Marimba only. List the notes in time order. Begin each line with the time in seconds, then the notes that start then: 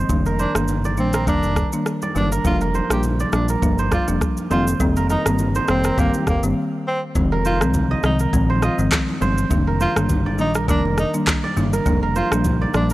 0.09 D#3 G3 A#3 D4
0.55 D#3 G3 A#3 D4
0.97 D#3 G3 A#3 D4
1.27 D#3 G3 A#3 D4
1.72 D#3 G3 A#3 D4
2.15 D#3 G3 A#3 D4
2.44 F3 G3 A#3 D4
2.90 F3 G3 A#3 D4
3.33 F3 G3 A#3 D4
3.62 F3 G3 A#3 D4
4.08 F3 G3 A#3 D4
4.50 D#3 G3 A#3 C4
4.80 D#3 G3 A#3 C4
5.25 D#3 G3 A#3 C4
5.68 D#3 G3 A#3 C4
5.98 D#3 G3 A#3 C4
6.43 D#3 G3 A#3 C4
7.15 D#3 F3 G#3 C4
7.61 D#3 F3 G#3 C4
8.03 D#3 F3 G#3 C4
8.33 D#3 F3 G#3 C4
8.78 D#3 F3 G#3 C4
9.21 D#3 F3 G#3 C4
9.50 D#3 G3 A#3 D4
9.96 D#3 G3 A#3 D4
10.39 D#3 G3 A#3 D4
10.68 D#3 G3 A#3 D4
11.14 D#3 G3 A#3 D4
11.56 D#3 G3 A#3 D4
11.86 F3 G3 A#3 D4
12.31 F3 G3 A#3 D4
12.74 F3 G3 A#3 D4